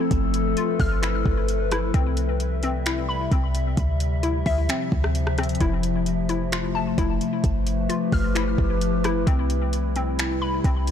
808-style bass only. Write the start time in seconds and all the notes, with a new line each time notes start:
0.11 G1
0.80 G1
1.26 G1
1.94 C2
3.32 C2
3.77 D2
4.46 D2
4.92 D2
5.61 F1
6.98 F1
7.44 G1
8.12 G1
8.58 G1
9.27 C2
10.64 C2